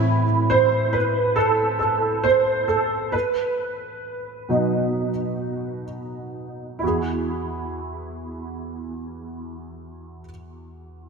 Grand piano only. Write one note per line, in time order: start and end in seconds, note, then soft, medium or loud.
0.00 0.23 A2 soft
0.00 0.23 E3 soft
0.00 0.24 C4 soft
0.00 0.54 E4 medium
0.50 0.95 C5 medium
0.93 1.34 B4 medium
1.36 1.78 A4 medium
1.79 2.26 A4 medium
2.24 2.65 C5 medium
2.68 3.14 A4 medium
3.12 5.83 B4 medium
4.49 5.10 B2 soft
4.49 5.10 F#3 soft
4.49 5.10 D#4 soft
6.79 10.20 E4 soft
6.83 10.24 E2 soft
6.83 10.24 F#4 soft
6.83 10.28 G#4 medium